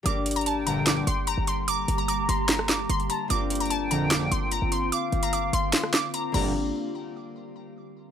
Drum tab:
CC |--------------------------------|--------------------------------|--------------------------------|----------------------------x---|
HH |x---xxxxx---x---x---x---x---x---|x---x---x---x---x-------x-x-x---|x---xxxxx---x---x---x---x---x---|x---x-x-x---x---x-------x-------|
CP |----------------x---------------|----------------x---x-----------|----------------x---------------|----------------x---x-----------|
SD |----------------o---------------|----------------o-r-o-----------|----------------o---------------|----------------o-r-o-----------|

CC |--------------------------------|
HH |--------------------------------|
CP |--------------------------------|
SD |--------------------------------|